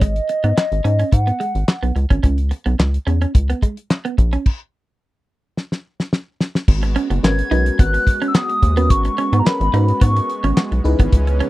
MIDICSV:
0, 0, Header, 1, 8, 480
1, 0, Start_track
1, 0, Tempo, 555556
1, 12, Time_signature, 4, 2, 24, 8
1, 9932, End_track
2, 0, Start_track
2, 0, Title_t, "Soft synth lead"
2, 0, Program_c, 0, 80
2, 17, Note_on_c, 0, 75, 102
2, 976, Note_on_c, 0, 78, 95
2, 989, Note_off_c, 0, 75, 0
2, 1694, Note_off_c, 0, 78, 0
2, 6257, Note_on_c, 0, 92, 116
2, 6735, Note_on_c, 0, 90, 110
2, 6748, Note_off_c, 0, 92, 0
2, 7149, Note_off_c, 0, 90, 0
2, 7154, Note_on_c, 0, 88, 73
2, 7214, Note_on_c, 0, 87, 100
2, 7227, Note_off_c, 0, 88, 0
2, 7692, Note_on_c, 0, 85, 102
2, 7705, Note_off_c, 0, 87, 0
2, 8112, Note_off_c, 0, 85, 0
2, 8117, Note_on_c, 0, 82, 58
2, 8174, Note_on_c, 0, 83, 100
2, 8187, Note_off_c, 0, 82, 0
2, 8649, Note_off_c, 0, 83, 0
2, 8654, Note_on_c, 0, 85, 87
2, 9339, Note_off_c, 0, 85, 0
2, 9932, End_track
3, 0, Start_track
3, 0, Title_t, "FM electric piano"
3, 0, Program_c, 1, 5
3, 6247, Note_on_c, 1, 61, 84
3, 6249, Note_on_c, 1, 66, 73
3, 6251, Note_on_c, 1, 70, 70
3, 6254, Note_on_c, 1, 71, 87
3, 6377, Note_off_c, 1, 61, 0
3, 6378, Note_off_c, 1, 66, 0
3, 6379, Note_off_c, 1, 70, 0
3, 6381, Note_off_c, 1, 71, 0
3, 6486, Note_on_c, 1, 61, 77
3, 6488, Note_on_c, 1, 66, 78
3, 6490, Note_on_c, 1, 70, 74
3, 6493, Note_on_c, 1, 71, 85
3, 6971, Note_off_c, 1, 61, 0
3, 6972, Note_off_c, 1, 66, 0
3, 6973, Note_off_c, 1, 70, 0
3, 6975, Note_off_c, 1, 71, 0
3, 7573, Note_on_c, 1, 61, 85
3, 7576, Note_on_c, 1, 66, 81
3, 7578, Note_on_c, 1, 70, 84
3, 7580, Note_on_c, 1, 71, 92
3, 7874, Note_off_c, 1, 61, 0
3, 7875, Note_off_c, 1, 66, 0
3, 7876, Note_off_c, 1, 70, 0
3, 7877, Note_off_c, 1, 71, 0
3, 8167, Note_on_c, 1, 61, 80
3, 8169, Note_on_c, 1, 66, 70
3, 8171, Note_on_c, 1, 70, 70
3, 8174, Note_on_c, 1, 71, 86
3, 8297, Note_off_c, 1, 61, 0
3, 8298, Note_off_c, 1, 66, 0
3, 8299, Note_off_c, 1, 70, 0
3, 8301, Note_off_c, 1, 71, 0
3, 8408, Note_on_c, 1, 61, 77
3, 8410, Note_on_c, 1, 66, 69
3, 8413, Note_on_c, 1, 70, 65
3, 8415, Note_on_c, 1, 71, 82
3, 8892, Note_off_c, 1, 61, 0
3, 8893, Note_off_c, 1, 66, 0
3, 8895, Note_off_c, 1, 70, 0
3, 8895, Note_off_c, 1, 71, 0
3, 9367, Note_on_c, 1, 63, 96
3, 9370, Note_on_c, 1, 64, 80
3, 9372, Note_on_c, 1, 68, 85
3, 9373, Note_on_c, 1, 71, 110
3, 9932, Note_off_c, 1, 63, 0
3, 9932, Note_off_c, 1, 64, 0
3, 9932, Note_off_c, 1, 68, 0
3, 9932, Note_off_c, 1, 71, 0
3, 9932, End_track
4, 0, Start_track
4, 0, Title_t, "Clean electric guitar"
4, 0, Program_c, 2, 27
4, 14, Note_on_c, 2, 56, 87
4, 121, Note_off_c, 2, 56, 0
4, 379, Note_on_c, 2, 59, 64
4, 475, Note_off_c, 2, 59, 0
4, 730, Note_on_c, 2, 61, 68
4, 839, Note_off_c, 2, 61, 0
4, 859, Note_on_c, 2, 61, 67
4, 955, Note_off_c, 2, 61, 0
4, 1099, Note_on_c, 2, 59, 57
4, 1195, Note_off_c, 2, 59, 0
4, 1210, Note_on_c, 2, 56, 70
4, 1319, Note_off_c, 2, 56, 0
4, 1578, Note_on_c, 2, 59, 63
4, 1674, Note_off_c, 2, 59, 0
4, 1818, Note_on_c, 2, 61, 71
4, 1914, Note_off_c, 2, 61, 0
4, 1928, Note_on_c, 2, 61, 83
4, 2038, Note_off_c, 2, 61, 0
4, 2296, Note_on_c, 2, 59, 61
4, 2393, Note_off_c, 2, 59, 0
4, 2650, Note_on_c, 2, 61, 76
4, 2759, Note_off_c, 2, 61, 0
4, 2778, Note_on_c, 2, 61, 75
4, 2875, Note_off_c, 2, 61, 0
4, 3021, Note_on_c, 2, 59, 63
4, 3116, Note_off_c, 2, 59, 0
4, 3133, Note_on_c, 2, 56, 79
4, 3241, Note_off_c, 2, 56, 0
4, 3499, Note_on_c, 2, 59, 71
4, 3595, Note_off_c, 2, 59, 0
4, 3739, Note_on_c, 2, 61, 72
4, 3835, Note_off_c, 2, 61, 0
4, 6012, Note_on_c, 2, 61, 86
4, 6120, Note_off_c, 2, 61, 0
4, 6138, Note_on_c, 2, 59, 84
4, 6234, Note_off_c, 2, 59, 0
4, 6490, Note_on_c, 2, 63, 87
4, 6599, Note_off_c, 2, 63, 0
4, 6733, Note_on_c, 2, 59, 71
4, 6840, Note_off_c, 2, 59, 0
4, 7099, Note_on_c, 2, 61, 82
4, 7195, Note_off_c, 2, 61, 0
4, 7213, Note_on_c, 2, 59, 88
4, 7320, Note_off_c, 2, 59, 0
4, 7579, Note_on_c, 2, 59, 89
4, 7675, Note_off_c, 2, 59, 0
4, 7934, Note_on_c, 2, 61, 82
4, 8041, Note_off_c, 2, 61, 0
4, 8062, Note_on_c, 2, 59, 97
4, 8157, Note_off_c, 2, 59, 0
4, 8413, Note_on_c, 2, 63, 81
4, 8521, Note_off_c, 2, 63, 0
4, 8653, Note_on_c, 2, 59, 84
4, 8760, Note_off_c, 2, 59, 0
4, 9021, Note_on_c, 2, 61, 79
4, 9116, Note_off_c, 2, 61, 0
4, 9137, Note_on_c, 2, 59, 86
4, 9243, Note_off_c, 2, 59, 0
4, 9503, Note_on_c, 2, 59, 101
4, 9597, Note_off_c, 2, 59, 0
4, 9853, Note_on_c, 2, 61, 91
4, 9932, Note_off_c, 2, 61, 0
4, 9932, End_track
5, 0, Start_track
5, 0, Title_t, "Analog synth pad"
5, 0, Program_c, 3, 89
5, 5770, Note_on_c, 3, 56, 90
5, 5770, Note_on_c, 3, 59, 79
5, 5770, Note_on_c, 3, 66, 79
5, 9337, Note_off_c, 3, 66, 0
5, 9370, Note_on_c, 3, 52, 83
5, 9371, Note_on_c, 3, 49, 87
5, 9371, Note_on_c, 3, 61, 75
5, 9932, Note_off_c, 3, 49, 0
5, 9932, Note_off_c, 3, 52, 0
5, 9932, Note_off_c, 3, 56, 0
5, 9932, Note_off_c, 3, 59, 0
5, 9932, Note_off_c, 3, 61, 0
5, 9932, End_track
6, 0, Start_track
6, 0, Title_t, "Analog synth bass"
6, 0, Program_c, 4, 38
6, 12, Note_on_c, 4, 32, 91
6, 176, Note_off_c, 4, 32, 0
6, 380, Note_on_c, 4, 44, 98
6, 457, Note_off_c, 4, 44, 0
6, 621, Note_on_c, 4, 32, 92
6, 697, Note_off_c, 4, 32, 0
6, 732, Note_on_c, 4, 44, 108
6, 896, Note_off_c, 4, 44, 0
6, 972, Note_on_c, 4, 44, 110
6, 1136, Note_off_c, 4, 44, 0
6, 1340, Note_on_c, 4, 32, 88
6, 1417, Note_off_c, 4, 32, 0
6, 1579, Note_on_c, 4, 35, 78
6, 1656, Note_off_c, 4, 35, 0
6, 1691, Note_on_c, 4, 37, 92
6, 1779, Note_off_c, 4, 37, 0
6, 1819, Note_on_c, 4, 32, 90
6, 1896, Note_off_c, 4, 32, 0
6, 1931, Note_on_c, 4, 37, 91
6, 2182, Note_off_c, 4, 37, 0
6, 2299, Note_on_c, 4, 35, 99
6, 2377, Note_off_c, 4, 35, 0
6, 2413, Note_on_c, 4, 37, 95
6, 2577, Note_off_c, 4, 37, 0
6, 2652, Note_on_c, 4, 40, 96
6, 2816, Note_off_c, 4, 40, 0
6, 2893, Note_on_c, 4, 37, 75
6, 3057, Note_off_c, 4, 37, 0
6, 3613, Note_on_c, 4, 34, 102
6, 3777, Note_off_c, 4, 34, 0
6, 5771, Note_on_c, 4, 32, 94
6, 6023, Note_off_c, 4, 32, 0
6, 6138, Note_on_c, 4, 30, 112
6, 6216, Note_off_c, 4, 30, 0
6, 6251, Note_on_c, 4, 32, 96
6, 6416, Note_off_c, 4, 32, 0
6, 6491, Note_on_c, 4, 35, 98
6, 6656, Note_off_c, 4, 35, 0
6, 6732, Note_on_c, 4, 32, 96
6, 6896, Note_off_c, 4, 32, 0
6, 7452, Note_on_c, 4, 39, 96
6, 7691, Note_on_c, 4, 32, 88
6, 7704, Note_off_c, 4, 39, 0
6, 7856, Note_off_c, 4, 32, 0
6, 8058, Note_on_c, 4, 44, 112
6, 8135, Note_off_c, 4, 44, 0
6, 8298, Note_on_c, 4, 32, 109
6, 8376, Note_off_c, 4, 32, 0
6, 8411, Note_on_c, 4, 44, 118
6, 8575, Note_off_c, 4, 44, 0
6, 8653, Note_on_c, 4, 44, 107
6, 8817, Note_off_c, 4, 44, 0
6, 9018, Note_on_c, 4, 32, 102
6, 9096, Note_off_c, 4, 32, 0
6, 9260, Note_on_c, 4, 35, 79
6, 9337, Note_off_c, 4, 35, 0
6, 9374, Note_on_c, 4, 37, 107
6, 9460, Note_off_c, 4, 37, 0
6, 9499, Note_on_c, 4, 32, 101
6, 9576, Note_off_c, 4, 32, 0
6, 9612, Note_on_c, 4, 37, 96
6, 9863, Note_off_c, 4, 37, 0
6, 9932, End_track
7, 0, Start_track
7, 0, Title_t, "Muted clean electric guitar strokes"
7, 254, Note_on_c, 9, 29, 43
7, 340, Note_off_c, 9, 29, 0
7, 491, Note_on_c, 9, 29, 36
7, 578, Note_off_c, 9, 29, 0
7, 970, Note_on_c, 9, 29, 41
7, 1056, Note_off_c, 9, 29, 0
7, 1690, Note_on_c, 9, 29, 44
7, 1776, Note_off_c, 9, 29, 0
7, 2169, Note_on_c, 9, 29, 47
7, 2256, Note_off_c, 9, 29, 0
7, 2411, Note_on_c, 9, 29, 46
7, 2497, Note_off_c, 9, 29, 0
7, 2892, Note_on_c, 9, 29, 34
7, 2978, Note_off_c, 9, 29, 0
7, 3612, Note_on_c, 9, 29, 46
7, 3699, Note_off_c, 9, 29, 0
7, 5900, Note_on_c, 9, 29, 48
7, 5986, Note_off_c, 9, 29, 0
7, 6860, Note_on_c, 9, 29, 47
7, 6946, Note_off_c, 9, 29, 0
7, 7339, Note_on_c, 9, 29, 45
7, 7425, Note_off_c, 9, 29, 0
7, 7821, Note_on_c, 9, 29, 44
7, 7907, Note_off_c, 9, 29, 0
7, 8784, Note_on_c, 9, 29, 42
7, 8870, Note_off_c, 9, 29, 0
7, 9263, Note_on_c, 9, 29, 47
7, 9349, Note_off_c, 9, 29, 0
7, 9741, Note_on_c, 9, 29, 44
7, 9828, Note_off_c, 9, 29, 0
7, 9932, End_track
8, 0, Start_track
8, 0, Title_t, "Drums"
8, 12, Note_on_c, 9, 36, 116
8, 12, Note_on_c, 9, 42, 83
8, 98, Note_off_c, 9, 42, 0
8, 99, Note_off_c, 9, 36, 0
8, 138, Note_on_c, 9, 42, 45
8, 224, Note_off_c, 9, 42, 0
8, 251, Note_on_c, 9, 42, 63
8, 337, Note_off_c, 9, 42, 0
8, 379, Note_on_c, 9, 42, 46
8, 465, Note_off_c, 9, 42, 0
8, 497, Note_on_c, 9, 38, 116
8, 500, Note_on_c, 9, 39, 99
8, 584, Note_off_c, 9, 38, 0
8, 587, Note_off_c, 9, 39, 0
8, 622, Note_on_c, 9, 42, 52
8, 708, Note_off_c, 9, 42, 0
8, 735, Note_on_c, 9, 42, 69
8, 821, Note_off_c, 9, 42, 0
8, 860, Note_on_c, 9, 42, 54
8, 946, Note_off_c, 9, 42, 0
8, 971, Note_on_c, 9, 42, 99
8, 972, Note_on_c, 9, 36, 109
8, 1058, Note_off_c, 9, 42, 0
8, 1059, Note_off_c, 9, 36, 0
8, 1102, Note_on_c, 9, 42, 52
8, 1189, Note_off_c, 9, 42, 0
8, 1217, Note_on_c, 9, 42, 61
8, 1303, Note_off_c, 9, 42, 0
8, 1341, Note_on_c, 9, 42, 52
8, 1427, Note_off_c, 9, 42, 0
8, 1453, Note_on_c, 9, 38, 110
8, 1456, Note_on_c, 9, 39, 79
8, 1539, Note_off_c, 9, 38, 0
8, 1542, Note_off_c, 9, 39, 0
8, 1583, Note_on_c, 9, 42, 43
8, 1669, Note_off_c, 9, 42, 0
8, 1695, Note_on_c, 9, 42, 59
8, 1781, Note_off_c, 9, 42, 0
8, 1819, Note_on_c, 9, 36, 95
8, 1819, Note_on_c, 9, 42, 49
8, 1905, Note_off_c, 9, 36, 0
8, 1905, Note_off_c, 9, 42, 0
8, 1930, Note_on_c, 9, 42, 79
8, 1932, Note_on_c, 9, 36, 98
8, 2016, Note_off_c, 9, 42, 0
8, 2018, Note_off_c, 9, 36, 0
8, 2056, Note_on_c, 9, 42, 51
8, 2142, Note_off_c, 9, 42, 0
8, 2170, Note_on_c, 9, 42, 72
8, 2256, Note_off_c, 9, 42, 0
8, 2297, Note_on_c, 9, 42, 42
8, 2383, Note_off_c, 9, 42, 0
8, 2417, Note_on_c, 9, 38, 116
8, 2419, Note_on_c, 9, 39, 90
8, 2503, Note_off_c, 9, 38, 0
8, 2506, Note_off_c, 9, 39, 0
8, 2542, Note_on_c, 9, 42, 54
8, 2629, Note_off_c, 9, 42, 0
8, 2656, Note_on_c, 9, 42, 70
8, 2743, Note_off_c, 9, 42, 0
8, 2780, Note_on_c, 9, 42, 52
8, 2866, Note_off_c, 9, 42, 0
8, 2893, Note_on_c, 9, 36, 109
8, 2893, Note_on_c, 9, 42, 98
8, 2979, Note_off_c, 9, 36, 0
8, 2979, Note_off_c, 9, 42, 0
8, 3024, Note_on_c, 9, 42, 60
8, 3110, Note_off_c, 9, 42, 0
8, 3131, Note_on_c, 9, 36, 81
8, 3137, Note_on_c, 9, 42, 60
8, 3217, Note_off_c, 9, 36, 0
8, 3223, Note_off_c, 9, 42, 0
8, 3260, Note_on_c, 9, 42, 47
8, 3346, Note_off_c, 9, 42, 0
8, 3374, Note_on_c, 9, 38, 99
8, 3377, Note_on_c, 9, 39, 83
8, 3460, Note_off_c, 9, 38, 0
8, 3463, Note_off_c, 9, 39, 0
8, 3504, Note_on_c, 9, 42, 50
8, 3590, Note_off_c, 9, 42, 0
8, 3613, Note_on_c, 9, 36, 84
8, 3616, Note_on_c, 9, 42, 57
8, 3700, Note_off_c, 9, 36, 0
8, 3703, Note_off_c, 9, 42, 0
8, 3740, Note_on_c, 9, 42, 58
8, 3826, Note_off_c, 9, 42, 0
8, 3852, Note_on_c, 9, 36, 97
8, 3852, Note_on_c, 9, 49, 91
8, 3939, Note_off_c, 9, 36, 0
8, 3939, Note_off_c, 9, 49, 0
8, 4816, Note_on_c, 9, 38, 56
8, 4902, Note_off_c, 9, 38, 0
8, 4942, Note_on_c, 9, 38, 59
8, 5028, Note_off_c, 9, 38, 0
8, 5182, Note_on_c, 9, 38, 67
8, 5268, Note_off_c, 9, 38, 0
8, 5294, Note_on_c, 9, 38, 84
8, 5380, Note_off_c, 9, 38, 0
8, 5534, Note_on_c, 9, 38, 93
8, 5620, Note_off_c, 9, 38, 0
8, 5661, Note_on_c, 9, 38, 85
8, 5748, Note_off_c, 9, 38, 0
8, 5772, Note_on_c, 9, 36, 112
8, 5772, Note_on_c, 9, 49, 111
8, 5858, Note_off_c, 9, 36, 0
8, 5858, Note_off_c, 9, 49, 0
8, 5899, Note_on_c, 9, 42, 49
8, 5985, Note_off_c, 9, 42, 0
8, 6012, Note_on_c, 9, 42, 73
8, 6099, Note_off_c, 9, 42, 0
8, 6140, Note_on_c, 9, 42, 53
8, 6226, Note_off_c, 9, 42, 0
8, 6259, Note_on_c, 9, 38, 124
8, 6262, Note_on_c, 9, 39, 95
8, 6346, Note_off_c, 9, 38, 0
8, 6348, Note_off_c, 9, 39, 0
8, 6383, Note_on_c, 9, 42, 66
8, 6469, Note_off_c, 9, 42, 0
8, 6495, Note_on_c, 9, 42, 74
8, 6582, Note_off_c, 9, 42, 0
8, 6620, Note_on_c, 9, 42, 61
8, 6706, Note_off_c, 9, 42, 0
8, 6732, Note_on_c, 9, 36, 114
8, 6733, Note_on_c, 9, 42, 99
8, 6819, Note_off_c, 9, 36, 0
8, 6819, Note_off_c, 9, 42, 0
8, 6863, Note_on_c, 9, 42, 59
8, 6950, Note_off_c, 9, 42, 0
8, 6970, Note_on_c, 9, 36, 91
8, 6976, Note_on_c, 9, 42, 72
8, 7056, Note_off_c, 9, 36, 0
8, 7062, Note_off_c, 9, 42, 0
8, 7100, Note_on_c, 9, 42, 50
8, 7187, Note_off_c, 9, 42, 0
8, 7212, Note_on_c, 9, 38, 110
8, 7214, Note_on_c, 9, 39, 99
8, 7298, Note_off_c, 9, 38, 0
8, 7301, Note_off_c, 9, 39, 0
8, 7340, Note_on_c, 9, 42, 49
8, 7427, Note_off_c, 9, 42, 0
8, 7452, Note_on_c, 9, 36, 76
8, 7454, Note_on_c, 9, 42, 59
8, 7539, Note_off_c, 9, 36, 0
8, 7541, Note_off_c, 9, 42, 0
8, 7578, Note_on_c, 9, 42, 62
8, 7664, Note_off_c, 9, 42, 0
8, 7691, Note_on_c, 9, 42, 93
8, 7692, Note_on_c, 9, 36, 119
8, 7778, Note_off_c, 9, 36, 0
8, 7778, Note_off_c, 9, 42, 0
8, 7817, Note_on_c, 9, 42, 52
8, 7904, Note_off_c, 9, 42, 0
8, 7932, Note_on_c, 9, 42, 67
8, 8019, Note_off_c, 9, 42, 0
8, 8060, Note_on_c, 9, 42, 53
8, 8146, Note_off_c, 9, 42, 0
8, 8179, Note_on_c, 9, 38, 127
8, 8181, Note_on_c, 9, 39, 92
8, 8265, Note_off_c, 9, 38, 0
8, 8268, Note_off_c, 9, 39, 0
8, 8303, Note_on_c, 9, 42, 57
8, 8389, Note_off_c, 9, 42, 0
8, 8416, Note_on_c, 9, 42, 77
8, 8503, Note_off_c, 9, 42, 0
8, 8540, Note_on_c, 9, 42, 55
8, 8627, Note_off_c, 9, 42, 0
8, 8652, Note_on_c, 9, 42, 113
8, 8653, Note_on_c, 9, 36, 117
8, 8738, Note_off_c, 9, 42, 0
8, 8739, Note_off_c, 9, 36, 0
8, 8783, Note_on_c, 9, 42, 61
8, 8869, Note_off_c, 9, 42, 0
8, 8896, Note_on_c, 9, 42, 64
8, 8982, Note_off_c, 9, 42, 0
8, 9020, Note_on_c, 9, 42, 54
8, 9106, Note_off_c, 9, 42, 0
8, 9133, Note_on_c, 9, 38, 112
8, 9136, Note_on_c, 9, 39, 92
8, 9220, Note_off_c, 9, 38, 0
8, 9222, Note_off_c, 9, 39, 0
8, 9261, Note_on_c, 9, 42, 50
8, 9348, Note_off_c, 9, 42, 0
8, 9377, Note_on_c, 9, 42, 66
8, 9463, Note_off_c, 9, 42, 0
8, 9499, Note_on_c, 9, 42, 62
8, 9500, Note_on_c, 9, 36, 104
8, 9586, Note_off_c, 9, 36, 0
8, 9586, Note_off_c, 9, 42, 0
8, 9612, Note_on_c, 9, 42, 100
8, 9613, Note_on_c, 9, 36, 106
8, 9699, Note_off_c, 9, 36, 0
8, 9699, Note_off_c, 9, 42, 0
8, 9740, Note_on_c, 9, 42, 54
8, 9827, Note_off_c, 9, 42, 0
8, 9854, Note_on_c, 9, 42, 74
8, 9932, Note_off_c, 9, 42, 0
8, 9932, End_track
0, 0, End_of_file